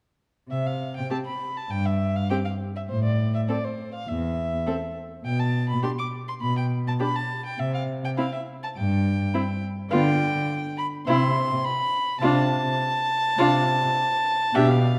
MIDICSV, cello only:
0, 0, Header, 1, 2, 480
1, 0, Start_track
1, 0, Key_signature, 0, "major"
1, 0, Tempo, 596421
1, 410, Time_signature, 4, 2, 24, 8
1, 3285, Tempo, 585366
1, 7125, Tempo, 579710
1, 12278, End_track
2, 0, Start_track
2, 0, Title_t, "Cello"
2, 0, Program_c, 0, 42
2, 407, Note_on_c, 0, 48, 40
2, 810, Note_off_c, 0, 48, 0
2, 1371, Note_on_c, 0, 43, 40
2, 1776, Note_off_c, 0, 43, 0
2, 2333, Note_on_c, 0, 45, 46
2, 2727, Note_off_c, 0, 45, 0
2, 3286, Note_on_c, 0, 40, 43
2, 3686, Note_off_c, 0, 40, 0
2, 4243, Note_on_c, 0, 47, 45
2, 4641, Note_off_c, 0, 47, 0
2, 5201, Note_on_c, 0, 47, 46
2, 5598, Note_off_c, 0, 47, 0
2, 6162, Note_on_c, 0, 48, 49
2, 6564, Note_off_c, 0, 48, 0
2, 7130, Note_on_c, 0, 43, 53
2, 7523, Note_off_c, 0, 43, 0
2, 8074, Note_on_c, 0, 50, 54
2, 8472, Note_off_c, 0, 50, 0
2, 9038, Note_on_c, 0, 48, 55
2, 9429, Note_off_c, 0, 48, 0
2, 9984, Note_on_c, 0, 48, 58
2, 10387, Note_off_c, 0, 48, 0
2, 10950, Note_on_c, 0, 48, 55
2, 11351, Note_off_c, 0, 48, 0
2, 11917, Note_on_c, 0, 47, 65
2, 12278, Note_off_c, 0, 47, 0
2, 12278, End_track
0, 0, End_of_file